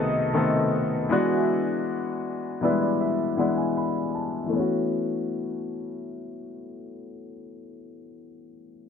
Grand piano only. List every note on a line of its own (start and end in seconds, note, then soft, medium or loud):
0.00 0.33 D#3 loud
0.00 0.34 A3 medium
0.00 0.35 B3 medium
0.00 0.36 C4 medium
0.00 1.12 F#4 loud
0.00 1.12 G#4 medium
0.00 0.17 A4 medium
0.33 1.10 D#3 medium
0.33 1.10 A3 medium
0.33 1.09 B3 medium
0.33 1.11 C4 medium
0.33 1.11 A4 medium
1.09 2.31 E3 medium
1.09 2.32 G#3 medium
1.09 2.32 B3 medium
1.09 2.32 D4 medium
1.09 2.33 F#4 loud
2.61 3.16 E3 medium
2.61 2.68 G3 medium
2.61 3.17 B3 medium
2.61 3.18 D4 medium
2.61 3.18 E4 medium
2.61 2.80 B4 medium
2.68 3.20 G#3 medium
2.82 2.99 D5 medium
3.00 3.36 E5 medium
3.37 4.20 E3 medium
3.37 4.20 G#3 medium
3.37 4.21 B3 medium
3.37 4.21 D4 medium
3.37 4.21 E4 medium
3.37 3.56 F#5 medium
3.57 3.75 G#5 medium
3.77 4.12 B5 medium
4.15 4.50 A5 medium
4.46 7.71 E3 medium
4.46 7.75 A3 medium
4.53 7.78 B3 medium
4.53 7.82 C#4 medium
4.60 7.85 F#4 medium